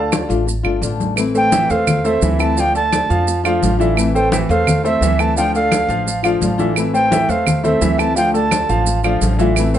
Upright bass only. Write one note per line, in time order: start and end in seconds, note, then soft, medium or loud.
0.00 0.24 D2 medium
0.30 0.62 A1 medium
0.64 0.81 G1 medium
0.82 1.64 A1 medium
1.70 2.19 E2 medium
2.22 3.04 D2 medium
3.10 3.59 F2 loud
3.63 4.44 A1 medium
4.49 4.98 E2 loud
5.01 5.83 D2 medium
5.88 6.38 A1 medium
6.41 7.23 A1 medium
7.29 7.78 E2 medium
7.81 8.63 D2 medium
8.69 9.18 A1 loud
9.22 9.79 A1 medium